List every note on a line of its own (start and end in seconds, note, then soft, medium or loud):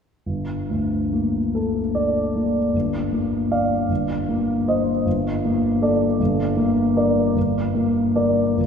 0.26 2.71 G1 soft
0.70 1.38 D2 soft
1.12 1.80 A#3 soft
1.55 2.20 A4 soft
1.95 2.58 D5 soft
2.36 2.75 A#3 soft
2.74 3.86 G1 soft
3.12 3.74 A#3 soft
3.51 3.86 D5 soft
3.51 3.86 F5 soft
3.89 5.02 G1 soft
4.29 4.91 A#3 soft
4.68 5.02 C5 soft
4.68 5.02 D#5 soft
5.06 6.16 G1 soft
5.45 6.05 A#3 soft
5.82 6.16 A4 soft
5.82 6.16 D5 soft
6.20 7.33 G1 soft
6.57 7.20 A#3 soft
6.97 7.32 A#4 soft
6.97 7.32 D5 soft
7.35 8.54 G1 soft
7.75 8.41 A#3 soft
8.16 8.54 A#4 soft
8.16 8.54 D5 soft
8.57 8.67 G1 soft